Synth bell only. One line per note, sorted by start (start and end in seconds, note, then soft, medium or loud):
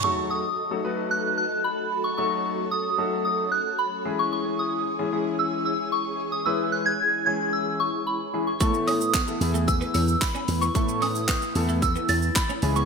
0.04 0.31 C#6 loud
0.30 0.80 D#6 loud
1.11 1.36 F#6 loud
1.38 1.65 F#6 loud
1.64 2.06 B5 medium
2.04 2.16 C#6 loud
2.18 2.68 C#6 loud
2.71 3.24 D#6 loud
3.25 3.52 D#6 medium
3.52 3.77 F#6 loud
3.79 4.20 B5 medium
4.19 4.31 C#6 medium
4.33 4.60 C#6 loud
4.59 5.09 D#6 medium
5.39 5.64 E6 loud
5.65 5.78 E6 loud
5.92 6.34 C#6 medium
6.32 6.38 D#6 loud
6.46 6.74 E6 loud
6.72 6.87 F#6 loud
6.86 7.25 G#6 loud
7.26 7.54 G#6 loud
7.53 7.81 E6 loud
7.80 8.08 C#6 medium
8.07 8.48 B5 medium
8.47 8.59 C#6 medium
8.60 8.88 C#6 medium
8.87 9.37 D#6 medium
9.68 9.93 E6 loud
9.94 10.19 E6 loud
10.21 10.63 B5 medium
10.61 10.74 C#6 loud
10.75 11.03 C#6 loud
11.02 11.52 D#6 loud
11.82 12.10 E6 loud
12.09 12.37 A6 loud
12.36 12.77 B5 medium
12.76 12.85 C#6 medium